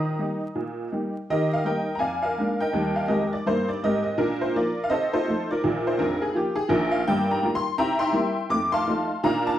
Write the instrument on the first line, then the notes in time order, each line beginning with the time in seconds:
honky-tonk piano
Already playing: D#3 D#5 A#5 D#6
0.19 G3 A#3 D#4
0.55 A#2
0.92 G3 A#3 D#4
1.30 D#3 G4 A#4 D#5
1.53 F5
1.64 G3 A#3 D#4 A#4 D#5 G5
1.95 F2 G#5 A#5
2.00 D5 F5
2.22 A#4 D5 F5
2.38 G#3 A#3 D4
2.60 A#4 D#5 G5
2.73 D#2 G3
2.96 F5
3.07 F2 G#3 G4 A#4 D#5
3.33 D5
3.46 G2 A#3 C5
3.68 D5
3.83 G#2 C4 G4 A#4 D#5
4.04 D#5
4.18 A#2 D4 F4 A#4
4.41 C5
4.55 F3 A#3 F4 A#4 D5
4.84 F5
4.89 C3 A4 C5 D#5
5.13 F4 A4 C5
5.28 F3 A3 D#4
5.51 F4 A#4 D5
5.64 A#1 A#2
5.87 C5
5.98 F1 F2 D4 F4 A#4
6.22 G#4
6.35 F3 A#3 F4 G4
6.56 G#4
6.69 A#1 A#2 D4 F4 A#4
6.92 F5
7.08 G2 A#3 A#4 D5 G5
7.31 A#5
7.43 G3 A#3 F4
7.55 C6
7.78 C3 E4 E5 G5 A#5
7.99 E5 G5 C6
8.13 G3 A#3 E4
8.50 F2 A3 D6
8.72 F5 A5 C6
8.88 F3 A3 D#4
9.23 A#2 D4 D5 F5 A#5
9.47 A5